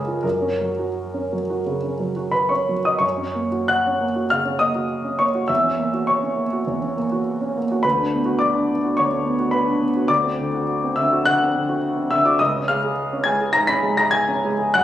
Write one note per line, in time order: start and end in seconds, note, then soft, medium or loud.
0.00 0.23 C#2 soft
0.00 0.17 G#3 soft
0.00 0.27 C#4 soft
0.00 0.24 G#4 soft
0.00 0.23 A#4 medium
0.07 0.24 F4 soft
0.23 1.61 F#2 soft
0.23 2.33 A#4 soft
0.42 0.70 C#4 soft
0.61 0.89 F#3 soft
0.79 1.34 F#4 soft
1.14 1.41 C#4 soft
1.33 1.59 F#3 soft
1.50 1.77 F#4 soft
1.66 1.93 C#3 soft
1.83 2.10 C#4 soft
2.00 2.27 F#3 soft
2.16 2.72 F#4 soft
2.31 2.49 B4 soft
2.31 2.50 B5 medium
2.49 2.79 C#4 soft
2.49 2.83 C#5 soft
2.49 2.85 C#6 soft
2.69 2.96 F#3 soft
2.85 3.02 F#4 soft
2.85 3.02 D#5 soft
2.85 3.02 D#6 medium
2.99 4.25 F#2 soft
2.99 3.65 C#5 soft
2.99 3.69 C#6 medium
3.17 3.46 C#4 soft
3.35 3.63 A#3 soft
3.52 4.03 F#4 soft
3.68 4.26 F#5 medium
3.68 4.29 F#6 medium
3.87 4.10 C#4 soft
4.01 4.25 A#3 soft
4.16 4.39 F#4 soft
4.30 4.54 C#3 soft
4.30 4.58 F5 medium
4.30 4.60 F6 medium
4.45 4.69 C#4 soft
4.59 4.84 A#3 soft
4.59 5.16 D#5 medium
4.59 5.19 D#6 medium
4.75 5.23 F#4 soft
5.04 5.28 C#4 soft
5.19 5.43 A#3 soft
5.19 5.47 C#5 soft
5.19 5.49 C#6 medium
5.35 5.49 F#4 soft
5.48 6.65 E2 soft
5.48 6.05 E5 medium
5.48 6.08 E6 medium
5.64 5.88 C#4 soft
5.79 6.03 A#3 soft
5.94 6.42 F#4 soft
6.07 6.93 C#5 soft
6.07 6.96 C#6 medium
6.22 6.47 C#4 soft
6.36 6.61 A#3 soft
6.53 6.76 F#4 soft
6.67 7.80 E2 soft
6.82 7.05 C#4 soft
6.97 7.20 A#3 soft
7.12 7.58 F#4 soft
7.41 7.64 C#4 soft
7.56 7.79 A#3 soft
7.71 7.85 F#4 soft
7.83 8.94 D2 soft
7.83 8.37 B4 medium
7.83 8.40 B5 medium
7.99 8.21 D4 soft
8.13 8.35 B3 soft
8.25 8.71 F#4 soft
8.39 8.93 D5 medium
8.39 8.96 D6 medium
8.55 8.78 D4 soft
8.70 8.92 B3 soft
8.85 9.07 F#4 soft
8.97 10.06 D2 soft
8.97 9.50 C#5 medium
8.97 9.52 C#6 medium
9.13 9.34 D4 soft
9.25 9.47 B3 soft
9.39 9.83 F#4 soft
9.51 10.05 B4 medium
9.51 10.08 B5 medium
9.68 9.89 D4 soft
9.81 10.03 B3 soft
9.96 10.09 F#4 soft
10.08 11.20 D2 medium
10.08 10.91 D5 medium
10.08 10.94 D6 medium
10.24 10.47 C4 soft
10.39 10.61 D3 soft
10.54 10.99 F#4 soft
10.84 11.05 C4 soft
10.96 11.19 D3 soft
10.96 11.23 E5 soft
10.96 11.24 E6 medium
11.12 11.34 F#4 soft
11.25 11.48 D3 soft
11.25 12.08 F#5 medium
11.25 12.11 F#6 medium
11.42 11.63 C4 soft
11.56 11.77 D3 soft
11.69 12.14 F#4 soft
11.96 12.19 C4 soft
12.11 12.34 D3 soft
12.11 12.24 E5 medium
12.11 12.25 E6 medium
12.25 12.40 F#4 soft
12.25 12.39 D5 soft
12.25 12.40 D6 medium
12.39 13.52 C#2 medium
12.39 12.67 D#5 medium
12.39 12.68 D#6 medium
12.56 12.78 C#4 soft
12.68 12.92 G#3 soft
12.68 13.22 F5 medium
12.68 13.26 F6 medium
12.84 13.29 G#4 soft
13.13 13.35 C#4 medium
13.24 13.48 G#3 soft
13.24 13.53 G#5 medium
13.24 13.54 G#6 medium
13.40 13.64 G#4 soft
13.53 13.78 G#2 soft
13.53 13.68 A#5 medium
13.53 13.68 A#6 loud
13.67 13.92 C#4 soft
13.67 13.96 B5 medium
13.67 13.98 B6 medium
13.83 14.07 G#3 soft
13.97 14.46 G#4 soft
13.97 14.13 A#5 medium
13.97 14.13 A#6 medium
14.11 14.69 G#5 medium
14.11 14.72 G#6 medium
14.29 14.53 C#4 soft
14.45 14.68 G#3 soft
14.59 14.73 G#4 soft
14.74 14.84 F#2 medium
14.74 14.84 F#5 medium
14.74 14.84 F#6 medium